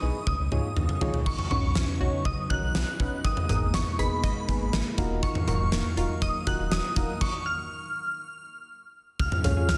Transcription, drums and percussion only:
0.27 kick, high tom
0.52 mid tom
0.77 mid tom
0.89 mid tom
1.01 floor tom
1.14 floor tom
1.26 kick, crash
1.39 mid tom
1.51 mid tom
1.75 snare
2.25 kick
2.50 kick
2.75 snare
3.00 kick
3.24 kick, closed hi-hat
3.37 mid tom
3.49 closed hi-hat, mid tom
3.74 snare, closed hi-hat
3.99 closed hi-hat
4.24 kick, closed hi-hat
4.49 kick, closed hi-hat
4.73 snare, closed hi-hat
4.98 kick, closed hi-hat
5.23 kick, closed hi-hat
5.35 mid tom
5.48 closed hi-hat, mid tom
5.72 snare, closed hi-hat
5.97 closed hi-hat
6.22 kick, closed hi-hat
6.47 kick, closed hi-hat
6.72 snare, closed hi-hat
6.96 kick, closed hi-hat
7.21 kick, crash
9.19 kick, closed hi-hat
9.32 mid tom
9.44 closed hi-hat, mid tom, cowbell
9.69 snare, closed hi-hat

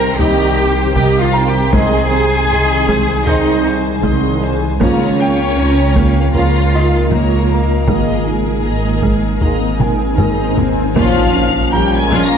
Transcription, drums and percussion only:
0.19 taiko low
0.96 taiko
1.73 taiko
2.88 taiko
3.27 taiko low
4.04 taiko
4.81 taiko
5.96 taiko
6.35 taiko low
7.11 taiko
7.88 taiko
9.03 taiko
9.41 taiko low
9.80 taiko mid
10.18 taiko low-mid
10.58 taiko low
10.96 taiko
12.12 taiko

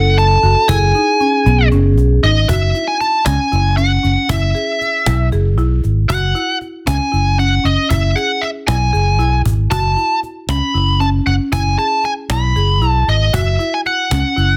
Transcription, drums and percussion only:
0.17 cajon slap
0.44 cajon slap
0.69 cajon bass
0.95 cajon slap
1.20 cajon slap
1.46 cajon slap
1.72 cajon slap
1.98 cajon slap
2.23 cajon slap
2.49 cajon bass
2.75 cajon slap
3.01 cajon slap
3.26 cajon slap
3.52 cajon slap
3.78 cajon slap
4.04 cajon slap
4.29 cajon bass
4.55 cajon slap
4.81 cajon slap
5.06 cajon slap
5.32 cajon slap
5.58 cajon slap
5.84 cajon slap
6.10 cajon bass
6.35 cajon slap
6.61 cajon slap
6.87 cajon slap
7.13 cajon slap
7.39 cajon slap
7.65 cajon slap
7.90 cajon bass
8.17 cajon slap
8.42 cajon slap
8.68 cajon slap
8.94 cajon slap
9.20 cajon slap
9.46 cajon bass
9.71 cajon bass
9.97 cajon slap
10.23 cajon slap
10.49 cajon slap
10.75 cajon slap
11.00 cajon slap
11.26 cajon slap
11.52 cajon bass
11.78 cajon slap
12.04 cajon slap
12.30 cajon slap
12.56 cajon slap
12.81 cajon slap
13.08 cajon slap
13.34 cajon bass
13.60 cajon slap
13.86 cajon slap
14.11 cajon slap
14.37 cajon slap

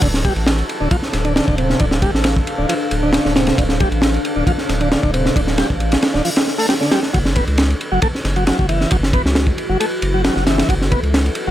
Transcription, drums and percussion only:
0.02 kick, ride
0.14 snare
0.25 kick, ride
0.36 ride
0.47 snare, ride
0.59 ride
0.69 ride
0.91 kick, ride
1.03 snare
1.13 snare, ride
1.25 ride
1.36 snare, ride
1.48 kick
1.58 ride
1.70 snare
1.79 kick, ride
1.91 snare
2.02 kick, ride
2.15 snare
2.24 snare, ride
2.36 kick
2.47 ride
2.69 ride
2.91 ride
3.13 snare, ride
3.25 snare
3.36 snare, ride
3.47 snare, ride
3.58 kick, ride
3.69 snare
3.80 kick, ride
3.92 ride
4.02 snare, ride
4.14 ride
4.25 ride
4.47 kick, ride
4.58 snare
4.69 snare, ride
4.81 ride
4.92 snare, ride
5.03 kick
5.14 ride
5.26 snare
5.36 kick, ride
5.47 snare
5.58 snare, ride
5.70 kick
5.80 ride
5.92 snare, ride
6.02 snare, ride
6.14 snare
6.25 open hi-hat
6.36 snare, ride
6.47 snare
6.59 open hi-hat
6.69 snare, ride
6.81 snare
6.92 snare, ride
7.03 snare
7.14 kick, ride
7.25 snare
7.36 kick, ride
7.47 ride
7.58 snare, ride
7.70 ride
7.81 ride
8.02 kick, ride
8.15 snare
8.25 snare, ride
8.36 ride
8.47 snare, ride
8.59 kick
8.69 ride
8.81 snare
8.91 kick, ride
9.03 snare
9.13 kick, ride
9.26 snare
9.35 snare, ride
9.47 kick
9.58 ride
9.80 ride
10.02 ride
10.25 snare, ride
10.36 snare
10.47 snare, ride
10.58 snare, ride
10.69 kick, ride
10.82 snare
10.92 kick, ride
11.03 ride
11.14 snare, ride
11.26 ride
11.35 ride

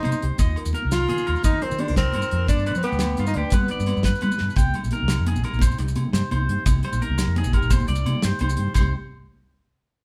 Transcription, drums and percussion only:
0.03 closed hi-hat, muted conga, low conga, low agogo
0.11 high conga, low conga, maracas
0.22 closed hi-hat
0.30 low conga
0.38 kick, closed hi-hat, muted conga, low agogo, maracas
0.47 high conga
0.56 closed hi-hat, low agogo
0.65 low conga, maracas
0.73 closed hi-hat, muted conga, low conga, maracas
0.82 high conga, low conga
0.92 snare, closed hi-hat, low agogo, maracas
1.00 low conga
1.08 closed hi-hat, muted conga, low conga
1.17 high conga, maracas
1.27 closed hi-hat, low agogo
1.35 low conga, maracas
1.43 kick, closed hi-hat, muted conga, low agogo, maracas
1.52 high conga
1.61 closed hi-hat, low conga
1.71 maracas
1.78 closed hi-hat, muted conga, low agogo
1.86 high conga, low conga
1.96 kick, snare, closed hi-hat, maracas
2.12 closed hi-hat, muted conga, low agogo
2.21 high conga, low conga, maracas
2.31 closed hi-hat
2.48 kick, closed hi-hat, muted conga, low agogo, maracas
2.56 high conga, low conga, maracas
2.66 closed hi-hat, low conga, low agogo, maracas
2.75 low conga, maracas
2.83 closed hi-hat, muted conga
2.92 high conga, low conga, maracas
2.99 snare, closed hi-hat, low agogo, maracas
3.17 closed hi-hat, muted conga, low conga, maracas
3.27 high conga, low conga, maracas
3.34 closed hi-hat, low conga, low agogo
3.45 low conga
3.50 kick, closed hi-hat, muted conga, low conga, low agogo, maracas
3.62 high conga, low conga
3.68 closed hi-hat, low conga, maracas
3.80 maracas
3.86 snare, closed hi-hat, muted conga, low agogo
3.97 high conga, low conga, maracas
4.03 kick, snare, closed hi-hat, maracas
4.15 maracas
4.21 closed hi-hat, muted conga, low conga, low agogo, maracas
4.31 high conga, low conga, maracas
4.38 snare, maracas
4.48 low conga, maracas
4.56 kick, closed hi-hat, muted conga, low agogo, maracas
4.67 high conga
4.74 closed hi-hat, low conga, low agogo
4.84 maracas
4.91 closed hi-hat, muted conga, maracas
5.00 high conga, low conga
5.08 snare, closed hi-hat, low conga, low agogo, maracas
5.27 closed hi-hat, muted conga, low conga
5.35 high conga, low conga, maracas
5.44 snare, closed hi-hat, low agogo
5.51 low conga, maracas
5.59 kick, closed hi-hat, muted conga, low agogo, maracas
5.68 high conga, maracas
5.78 closed hi-hat, low conga, maracas
5.88 maracas
5.95 closed hi-hat, muted conga, low agogo
6.05 high conga, low conga
6.13 snare, closed hi-hat, maracas
6.31 closed hi-hat, muted conga, low conga, low agogo
6.41 high conga, low conga
6.49 closed hi-hat
6.58 low conga
6.66 kick, closed hi-hat, muted conga, low agogo, maracas
6.76 high conga
6.83 closed hi-hat, low conga, low agogo
6.93 maracas
7.01 closed hi-hat, muted conga, maracas
7.10 high conga, low conga
7.18 snare, closed hi-hat, low conga, low agogo, maracas
7.36 closed hi-hat, muted conga, low conga
7.44 high conga, low conga, maracas
7.53 kick, closed hi-hat, low agogo
7.62 low conga, maracas
7.70 kick, closed hi-hat, muted conga, low agogo, maracas
7.80 high conga, maracas
7.87 closed hi-hat, low conga, maracas
7.95 maracas
8.06 closed hi-hat, muted conga, low agogo
8.15 high conga, low conga
8.22 snare, closed hi-hat, maracas
8.39 closed hi-hat, muted conga, low conga, low agogo
8.49 high conga, low conga, maracas
8.57 closed hi-hat
8.68 low conga
8.74 kick, crash, muted conga, low agogo, maracas

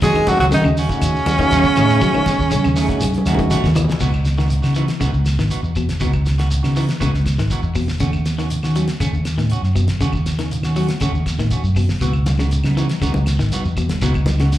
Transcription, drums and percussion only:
0.02 kick, closed hi-hat, low conga, shekere
0.15 closed hi-hat, claves, shekere
0.27 kick, snare, closed hi-hat, high conga, shekere
0.39 closed hi-hat, low conga, shekere
0.51 closed hi-hat, high conga, shekere
0.65 claves, shekere
0.77 open hi-hat, shekere
0.89 kick, snare, closed hi-hat, shekere
1.01 closed hi-hat, claves, shekere
1.16 shekere
1.26 closed hi-hat, high conga, claves, shekere
1.38 kick, closed hi-hat, shekere
1.51 closed hi-hat, high conga, shekere
1.64 kick, snare, shekere
1.76 closed hi-hat, low conga, claves, shekere
1.89 snare, shekere
2.01 kick, closed hi-hat, low conga, shekere
2.14 high conga, claves, shekere
2.26 kick, snare, closed hi-hat, high conga, shekere
2.39 kick, shekere
2.51 snare, closed hi-hat, high conga, shekere
2.64 claves, shekere
2.76 open hi-hat, shekere
2.89 kick, snare, closed hi-hat, shekere
3.00 closed hi-hat, high conga, claves, shekere
3.13 closed hi-hat, shekere
3.18 high conga
3.26 snare, closed hi-hat, claves, shekere
3.34 high conga, shekere
3.39 kick, closed hi-hat
3.51 snare, closed hi-hat, low conga, shekere
3.64 kick, snare, low conga, shekere
3.75 closed hi-hat, low conga, claves, shekere
3.84 low conga
3.89 snare, low conga, shekere
4.00 kick, crash, shekere
4.13 claves, shekere
4.25 snare, closed hi-hat, shekere
4.38 snare, shekere
4.49 closed hi-hat, shekere
4.62 snare, claves, shekere
4.75 closed hi-hat, shekere
4.88 snare, closed hi-hat, shekere
5.01 kick, closed hi-hat, claves, shekere
5.13 shekere
5.26 snare, closed hi-hat, claves, shekere
5.38 snare, shekere
5.51 closed hi-hat, shekere
5.64 shekere
5.76 kick, closed hi-hat, claves, shekere
5.89 snare, closed hi-hat, shekere
6.00 kick, snare, closed hi-hat, shekere
6.13 kick, claves, shekere
6.26 snare, closed hi-hat, shekere
6.39 snare, closed hi-hat, shekere
6.51 closed hi-hat, shekere
6.64 snare, claves, shekere
6.76 snare, open hi-hat, shekere
6.89 snare, closed hi-hat, shekere
7.01 kick, closed hi-hat, claves, shekere
7.14 snare, shekere
7.26 kick, snare, closed hi-hat, claves, shekere
7.38 snare, shekere
7.50 kick, snare, closed hi-hat, shekere
7.63 shekere
7.75 kick, open hi-hat, claves, shekere
7.88 snare, shekere
8.00 kick, closed hi-hat, shekere
8.13 claves, shekere
8.26 snare, closed hi-hat, shekere
8.38 snare, shekere
8.50 closed hi-hat, shekere
8.63 snare, claves, shekere
8.75 closed hi-hat, shekere
8.88 snare, closed hi-hat, shekere
9.00 kick, snare, closed hi-hat, claves, shekere
9.14 shekere
9.25 snare, closed hi-hat, claves, shekere
9.38 snare, shekere
9.50 closed hi-hat, shekere
9.63 snare, shekere
9.76 kick, closed hi-hat, claves, shekere
9.88 snare, closed hi-hat, shekere
10.00 kick, closed hi-hat, shekere
10.13 kick, claves, shekere
10.26 snare, closed hi-hat, shekere
10.39 snare, closed hi-hat, shekere
10.51 closed hi-hat, shekere
10.63 snare, claves, shekere
10.76 open hi-hat, shekere
10.88 snare, closed hi-hat, shekere
11.00 kick, closed hi-hat, claves, shekere
11.15 shekere
11.26 kick, snare, closed hi-hat, claves, shekere
11.39 snare, shekere
11.51 kick, closed hi-hat, shekere
11.64 shekere
11.76 kick, open hi-hat, claves, shekere
11.89 snare, shekere
12.01 kick, closed hi-hat, high conga, shekere
12.13 claves, shekere
12.26 snare, closed hi-hat, high conga, shekere
12.39 snare, shekere
12.51 closed hi-hat, high conga, shekere
12.64 snare, high conga, claves, shekere
12.77 snare, closed hi-hat, high conga, shekere
12.89 snare, closed hi-hat, shekere
13.02 kick, closed hi-hat, high conga, claves, shekere
13.14 high conga, shekere
13.26 snare, closed hi-hat, claves, shekere
13.39 snare, shekere
13.52 closed hi-hat, high conga, shekere
13.65 shekere
13.77 kick, closed hi-hat, claves, shekere
13.89 snare, closed hi-hat, high conga, shekere
14.01 kick, snare, closed hi-hat, shekere
14.14 kick, claves, shekere
14.26 snare, closed hi-hat, high conga, shekere
14.40 snare, closed hi-hat, shekere
14.51 snare, closed hi-hat, high conga, shekere

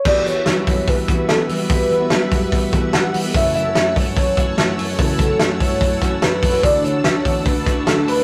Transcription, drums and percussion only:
0.05 kick, crash
0.26 hi-hat pedal, open hi-hat
0.46 snare, hi-hat pedal, open hi-hat
0.67 kick, hi-hat pedal, open hi-hat
0.88 kick, hi-hat pedal, open hi-hat
1.08 kick, hi-hat pedal, open hi-hat
1.28 snare, hi-hat pedal, open hi-hat
1.49 hi-hat pedal, open hi-hat
1.70 kick, hi-hat pedal, open hi-hat
1.90 hi-hat pedal, open hi-hat
2.10 snare, hi-hat pedal, open hi-hat
2.31 kick, hi-hat pedal, open hi-hat
2.52 kick, hi-hat pedal, open hi-hat
2.73 kick, hi-hat pedal, open hi-hat
2.93 snare, hi-hat pedal, open hi-hat
3.14 hi-hat pedal, open hi-hat
3.34 kick, hi-hat pedal, open hi-hat
3.55 hi-hat pedal, open hi-hat
3.75 snare, hi-hat pedal, open hi-hat
3.96 kick, hi-hat pedal, open hi-hat
4.17 kick, hi-hat pedal, open hi-hat
4.37 kick, hi-hat pedal, open hi-hat
4.58 snare, hi-hat pedal, open hi-hat
4.79 hi-hat pedal, open hi-hat
4.99 kick, hi-hat pedal, open hi-hat
5.19 kick, hi-hat pedal, open hi-hat
5.39 snare, hi-hat pedal, open hi-hat
5.60 kick, hi-hat pedal, open hi-hat
5.81 kick, hi-hat pedal, open hi-hat
6.01 kick, snare, hi-hat pedal, open hi-hat
6.22 snare, hi-hat pedal, open hi-hat
6.43 kick, hi-hat pedal, open hi-hat
6.63 kick, hi-hat pedal, open hi-hat
6.84 hi-hat pedal, open hi-hat
7.04 snare, hi-hat pedal, open hi-hat
7.25 kick, hi-hat pedal, open hi-hat
7.46 kick, hi-hat pedal, open hi-hat
7.66 kick, snare, hi-hat pedal, open hi-hat
7.87 snare, hi-hat pedal, open hi-hat
8.08 hi-hat pedal, open hi-hat

